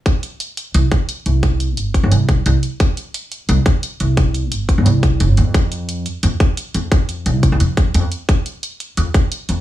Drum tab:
HH |xxxxxxxx|xxxxxxxx|xxxxxxxx|xxxxxxxx|
BD |o----o--|o--o-o--|o----o--|o--o-o--|

HH |xxxxxxxx|xxxxxxxx|xxxxxxxx|
BD |o----o--|o--o-o--|o----o--|